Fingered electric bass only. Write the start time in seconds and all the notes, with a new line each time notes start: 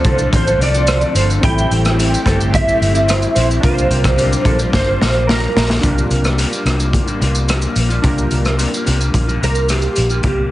0.05 C2
0.33 A1
0.58 C2
1.14 G1
1.43 A1
1.70 A1
2.26 G1
2.81 G1
3.36 A#1
3.63 C2
3.90 C2
4.45 A#1
4.73 G1
5.01 A#1
5.56 A#1
5.83 C2
6.10 C2
6.65 C2
7.21 C2
7.76 A#1
8.04 C2
8.32 C2
8.87 C2
9.14 A#1
9.42 C2
9.97 A#1
10.24 C2